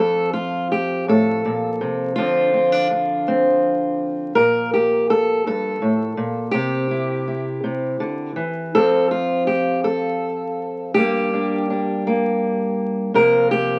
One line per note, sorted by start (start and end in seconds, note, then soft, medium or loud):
0.00 1.08 F2 medium
0.00 2.17 F3 medium
0.00 0.33 A4 medium
0.33 0.71 F4 medium
0.72 1.08 G4 medium
1.08 1.45 A2 medium
1.08 2.15 A4 medium
1.45 1.82 A#2 medium
1.81 2.17 C3 medium
2.16 4.32 D3 medium
2.16 6.53 F3 soft
2.16 2.53 C4 soft
2.16 4.35 F4 loud
2.20 2.53 D4 soft
2.54 2.72 C4 soft
2.72 2.90 D4 soft
2.91 4.32 D4 soft
3.28 4.32 C4 soft
4.35 5.45 A#2 medium
4.35 4.72 A#4 loud
4.74 5.09 G4 medium
5.10 5.45 A4 medium
5.46 5.81 G2 medium
5.46 6.51 A4 medium
5.82 6.17 A2 medium
6.17 6.53 A#2 medium
6.51 7.63 C3 medium
6.51 8.73 G4 loud
6.91 7.26 E4 soft
7.28 8.70 E4 soft
7.64 8.00 C3 medium
8.00 8.36 D3 medium
8.36 8.74 E3 medium
8.75 10.96 F2 medium
8.75 10.97 F3 soft
8.75 10.93 C4 soft
8.75 9.10 F4 soft
8.75 9.11 A4 loud
9.11 9.46 F4 medium
9.47 9.84 G4 medium
9.84 10.94 A4 medium
10.94 13.10 G2 medium
10.94 13.11 G3 soft
10.94 12.06 A#3 soft
10.94 13.14 G4 loud
10.99 11.32 D4 soft
11.33 11.69 D4 soft
11.70 13.11 D4 soft
12.07 13.14 A#3 medium
13.14 13.79 C3 medium
13.14 13.79 F3 soft
13.14 13.79 A#3 soft
13.14 13.79 F4 soft
13.14 13.51 A#4 loud
13.51 13.79 G4 medium